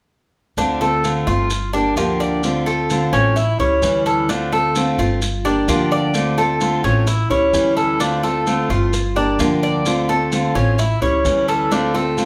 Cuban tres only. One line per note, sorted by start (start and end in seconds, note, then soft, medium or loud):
0.58 0.80 D4 medium
0.81 1.26 A4 medium
1.27 1.72 F4 medium
1.73 1.96 D4 medium
1.97 2.20 F4 medium
2.20 2.65 D5 medium
2.66 3.11 A4 medium
3.13 3.35 C#4 medium
3.36 3.59 E4 medium
3.60 4.04 C#5 medium
4.06 4.28 A4 medium
4.29 4.51 D4 medium
4.52 4.97 A4 medium
4.99 5.44 F4 medium
5.45 5.67 D4 medium
5.69 5.91 F4 medium
5.92 6.37 D5 medium
6.38 6.83 A4 medium
6.84 7.07 C#4 medium
7.07 7.30 E4 medium
7.30 7.75 C#5 medium
7.77 7.99 A4 medium
8.00 8.23 D4 medium
8.23 8.68 A4 medium
8.70 9.15 F4 medium
9.16 9.39 D4 medium
9.40 9.62 F4 medium
9.63 10.08 D5 medium
10.09 10.54 A4 medium
10.55 10.78 C#4 medium
10.79 11.01 E4 medium
11.02 11.47 C#5 medium
11.48 11.71 A4 medium
11.72 11.94 D4 medium
11.95 12.25 A4 medium